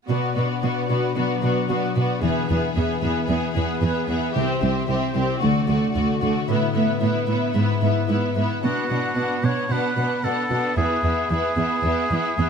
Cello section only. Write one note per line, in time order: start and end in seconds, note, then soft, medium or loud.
0.09 0.17 B2 soft
0.36 0.44 B2 soft
0.63 0.71 B2 soft
0.89 0.97 B2 soft
1.16 1.24 B2 soft
1.42 1.50 B2 soft
1.69 1.77 B2 soft
1.96 2.04 B2 soft
2.23 2.31 E2 soft
2.50 2.58 E2 soft
2.76 2.84 E2 soft
3.03 3.11 E2 soft
3.29 3.37 E2 soft
3.56 3.64 E2 soft
3.82 3.90 E2 soft
4.09 4.17 E2 soft
4.36 4.44 C2 soft
4.62 4.70 C2 soft
4.89 4.97 C2 soft
5.15 5.23 C2 soft
5.42 5.50 D2 soft
5.68 5.76 D2 soft
5.95 6.03 D2 soft
6.21 6.29 D2 soft
6.49 6.57 A2 soft
6.75 6.83 A2 soft
7.02 7.10 A2 soft
7.28 7.36 A2 soft
7.55 7.63 G#2 soft
7.82 7.90 G#2 soft
8.08 8.16 G#2 soft
8.35 8.43 G#2 soft
8.63 8.71 B2 soft
8.90 8.98 B2 soft
9.16 9.24 B2 soft
9.44 9.52 B2 soft
9.70 9.78 B2 soft
9.97 10.05 B2 soft
10.24 10.32 B2 soft
10.50 10.58 B2 soft
10.77 10.85 E2 soft
11.03 11.11 E2 soft
11.30 11.38 E2 soft
11.57 11.65 E2 soft
11.84 11.92 E2 soft
12.11 12.19 E2 soft
12.38 12.46 E2 soft